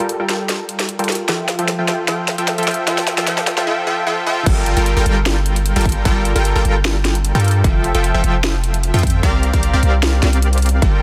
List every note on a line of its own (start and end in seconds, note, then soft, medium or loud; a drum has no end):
0.00 0.17 G3 medium
0.00 0.17 F4 medium
0.00 0.17 A4 medium
0.00 0.17 A#4 medium
0.00 0.17 G5 medium
0.09 closed hi-hat medium
0.20 0.27 G3 medium
0.20 0.27 F4 medium
0.20 0.27 A4 medium
0.20 0.27 A#4 medium
0.20 0.27 G5 medium
0.29 0.97 G3 medium
0.29 0.97 F4 medium
0.29 0.97 A4 medium
0.29 0.97 A#4 medium
0.29 0.97 G5 medium
0.29 snare medium
0.29 closed hi-hat medium
0.49 snare medium
0.49 closed hi-hat medium
0.69 closed hi-hat medium
0.79 snare medium
0.79 closed hi-hat medium
0.89 closed hi-hat medium
0.99 1.26 G3 medium
0.99 1.26 F4 medium
0.99 1.26 A4 medium
0.99 1.26 A#4 medium
0.99 1.26 G5 medium
0.99 closed hi-hat soft
1.04 closed hi-hat medium
1.09 snare medium
1.09 closed hi-hat soft
1.12 closed hi-hat medium
1.15 closed hi-hat medium
1.28 1.56 F3 medium
1.28 1.56 F4 medium
1.28 1.56 A4 medium
1.28 1.56 E5 medium
1.28 1.56 G5 medium
1.28 snare medium
1.28 closed hi-hat medium
1.48 snare medium
1.48 closed hi-hat medium
1.59 1.76 F3 medium
1.59 1.76 F4 medium
1.59 1.76 A4 medium
1.59 1.76 E5 medium
1.59 1.76 G5 medium
1.59 closed hi-hat medium
1.68 snare medium
1.68 closed hi-hat medium
1.79 1.86 F3 medium
1.79 1.86 F4 medium
1.79 1.86 A4 medium
1.79 1.86 E5 medium
1.79 1.86 G5 medium
1.88 2.06 F3 medium
1.88 2.06 F4 medium
1.88 2.06 A4 medium
1.88 2.06 E5 medium
1.88 2.06 G5 medium
1.88 snare medium
1.88 closed hi-hat medium
2.08 2.36 F3 medium
2.08 2.36 F4 medium
2.08 2.36 A4 medium
2.08 2.36 E5 medium
2.08 2.36 G5 medium
2.08 snare medium
2.08 closed hi-hat medium
2.28 snare medium
2.28 closed hi-hat medium
2.38 2.56 F3 medium
2.38 2.56 F4 medium
2.38 2.56 A4 medium
2.38 2.56 E5 medium
2.38 2.56 G5 medium
2.38 closed hi-hat medium
2.48 snare medium
2.48 closed hi-hat medium
2.58 2.65 F3 medium
2.58 2.65 F4 medium
2.58 2.65 A4 medium
2.58 2.65 E5 medium
2.58 2.65 G5 medium
2.58 closed hi-hat soft
2.63 closed hi-hat medium
2.68 2.86 F3 medium
2.68 2.86 F4 medium
2.68 2.86 A4 medium
2.68 2.86 E5 medium
2.68 2.86 G5 medium
2.68 snare medium
2.68 closed hi-hat soft
2.71 closed hi-hat medium
2.74 closed hi-hat medium
2.87 3.15 F3 medium
2.87 3.15 F4 medium
2.87 3.15 A4 medium
2.87 3.15 E5 medium
2.87 3.15 G5 medium
2.87 snare medium
2.87 closed hi-hat medium
2.98 snare medium
3.07 snare medium
3.07 closed hi-hat medium
3.18 3.26 F3 medium
3.18 3.26 F4 medium
3.18 3.26 A4 medium
3.18 3.26 E5 medium
3.18 3.26 G5 medium
3.18 snare medium
3.18 closed hi-hat medium
3.27 3.55 F3 medium
3.27 3.55 F4 medium
3.27 3.55 A4 medium
3.27 3.55 E5 medium
3.27 3.55 G5 medium
3.27 snare loud
3.27 closed hi-hat medium
3.38 snare medium
3.47 snare loud
3.47 closed hi-hat medium
3.57 3.65 F3 medium
3.57 3.65 F4 medium
3.57 3.65 A4 medium
3.57 3.65 E5 medium
3.57 3.65 G5 medium
3.57 snare medium
3.67 3.85 F3 medium
3.67 3.85 F4 medium
3.67 3.85 A4 medium
3.67 3.85 E5 medium
3.67 3.85 G5 medium
3.87 4.05 F3 medium
3.87 4.05 F4 medium
3.87 4.05 A4 medium
3.87 4.05 E5 medium
3.87 4.05 G5 medium
4.07 4.25 F3 medium
4.07 4.25 F4 medium
4.07 4.25 A4 medium
4.07 4.25 E5 medium
4.07 4.25 G5 medium
4.27 4.45 F3 medium
4.27 4.45 F4 medium
4.27 4.45 A4 medium
4.27 4.45 E5 medium
4.27 4.45 G5 medium
4.46 4.75 G1 loud
4.46 4.74 G3 medium
4.46 4.74 A4 medium
4.46 4.74 A#4 medium
4.46 kick loud
4.46 closed hi-hat medium
4.46 crash loud
4.66 closed hi-hat medium
4.77 4.94 G1 medium
4.77 4.94 G3 medium
4.77 4.94 F4 medium
4.77 4.94 A4 medium
4.77 4.94 A#4 medium
4.77 4.94 G5 medium
4.77 closed hi-hat medium
4.86 closed hi-hat medium
4.97 5.04 G1 loud
4.97 5.04 G3 medium
4.97 5.04 F4 medium
4.97 5.04 A4 medium
4.97 5.04 A#4 medium
4.97 5.04 G5 medium
5.06 5.74 G1 loud
5.06 5.74 G3 medium
5.06 5.74 F4 medium
5.06 5.74 A4 medium
5.06 5.74 A#4 medium
5.06 5.74 G5 medium
5.06 closed hi-hat medium
5.26 snare loud
5.26 closed hi-hat medium
5.46 closed hi-hat medium
5.56 closed hi-hat medium
5.66 closed hi-hat medium
5.76 6.03 G1 loud
5.76 6.03 G3 medium
5.76 6.03 F4 medium
5.76 6.03 A4 medium
5.76 6.03 A#4 medium
5.76 6.03 G5 medium
5.76 closed hi-hat medium
5.81 closed hi-hat medium
5.85 kick loud
5.85 closed hi-hat medium
5.89 closed hi-hat medium
5.92 closed hi-hat medium
6.05 6.34 G1 loud
6.05 6.33 G3 medium
6.05 6.33 F4 medium
6.05 6.33 A4 medium
6.05 6.33 A#4 medium
6.05 6.33 G5 medium
6.05 kick loud
6.05 closed hi-hat medium
6.25 closed hi-hat medium
6.36 6.53 G1 medium
6.36 6.53 G3 medium
6.36 6.53 F4 medium
6.36 6.53 A4 medium
6.36 6.53 A#4 medium
6.36 6.53 G5 medium
6.36 closed hi-hat medium
6.45 closed hi-hat medium
6.56 6.63 G1 medium
6.56 6.63 G3 medium
6.56 6.63 F4 medium
6.56 6.63 A4 medium
6.56 6.63 A#4 medium
6.56 6.63 G5 medium
6.65 7.33 G1 loud
6.65 7.32 G3 medium
6.65 7.32 F4 medium
6.65 7.32 A4 medium
6.65 7.32 A#4 medium
6.65 7.32 G5 medium
6.65 closed hi-hat medium
6.85 snare loud
6.85 closed hi-hat medium
7.05 snare medium
7.05 closed hi-hat medium
7.15 closed hi-hat medium
7.25 closed hi-hat medium
7.35 7.62 G2 loud
7.35 7.62 G3 medium
7.35 7.62 F4 medium
7.35 7.62 A4 medium
7.35 7.62 A#4 medium
7.35 7.62 G5 medium
7.35 closed hi-hat medium
7.40 closed hi-hat medium
7.44 closed hi-hat medium
7.48 closed hi-hat medium
7.51 closed hi-hat medium
7.64 7.92 F1 loud
7.64 7.92 F3 medium
7.64 7.92 F4 medium
7.64 7.92 A4 medium
7.64 7.92 E5 medium
7.64 7.92 G5 medium
7.64 kick loud
7.64 closed hi-hat medium
7.84 closed hi-hat medium
7.95 8.12 F1 medium
7.95 8.12 F3 medium
7.95 8.12 F4 medium
7.95 8.12 A4 medium
7.95 8.12 E5 medium
7.95 8.12 G5 medium
7.95 closed hi-hat medium
8.04 closed hi-hat medium
8.14 8.22 F1 loud
8.14 8.22 F3 medium
8.14 8.22 F4 medium
8.14 8.22 A4 medium
8.14 8.22 E5 medium
8.14 8.22 G5 medium
8.24 8.92 F1 loud
8.24 8.91 F3 medium
8.24 8.91 F4 medium
8.24 8.91 A4 medium
8.24 8.91 E5 medium
8.24 8.91 G5 medium
8.24 closed hi-hat medium
8.44 snare loud
8.44 closed hi-hat medium
8.64 closed hi-hat medium
8.74 closed hi-hat medium
8.83 closed hi-hat medium
8.94 9.21 F2 loud
8.94 9.21 F3 medium
8.94 9.21 F4 medium
8.94 9.21 A4 medium
8.94 9.21 E5 medium
8.94 9.21 G5 medium
8.94 closed hi-hat soft
8.99 closed hi-hat medium
9.03 kick loud
9.03 closed hi-hat medium
9.07 closed hi-hat medium
9.10 closed hi-hat medium
9.23 9.51 C2 loud
9.23 9.51 C4 medium
9.23 9.51 G4 medium
9.23 9.51 A#4 medium
9.23 9.51 D5 medium
9.23 9.51 F5 medium
9.23 kick loud
9.23 closed hi-hat medium
9.43 closed hi-hat medium
9.54 9.71 C2 medium
9.54 9.71 C4 medium
9.54 9.71 G4 medium
9.54 9.71 A#4 medium
9.54 9.71 D5 medium
9.54 9.71 F5 medium
9.54 kick medium
9.54 closed hi-hat medium
9.63 closed hi-hat medium
9.73 9.81 C2 medium
9.73 9.81 C4 medium
9.73 9.81 G4 medium
9.73 9.81 A#4 medium
9.73 9.81 D5 medium
9.73 9.81 F5 medium
9.83 10.21 C2 loud
9.83 10.21 C4 medium
9.83 10.21 G4 medium
9.83 10.21 A#4 medium
9.83 10.21 D5 medium
9.83 10.21 F5 medium
9.83 closed hi-hat medium
10.03 snare loud
10.03 closed hi-hat medium
10.23 10.80 C2 loud
10.23 10.80 C4 medium
10.23 10.80 G4 medium
10.23 10.80 A#4 medium
10.23 10.80 D5 medium
10.23 10.80 F5 medium
10.23 snare medium
10.23 closed hi-hat medium
10.33 closed hi-hat medium
10.42 closed hi-hat medium
10.53 closed hi-hat soft
10.58 closed hi-hat medium
10.62 closed hi-hat soft
10.66 closed hi-hat medium
10.69 closed hi-hat medium
10.82 11.02 G1 loud
10.82 11.02 G3 medium
10.82 11.02 F4 medium
10.82 11.02 A4 medium
10.82 11.02 A#4 medium
10.82 11.02 G5 medium
10.82 kick loud
10.82 closed hi-hat medium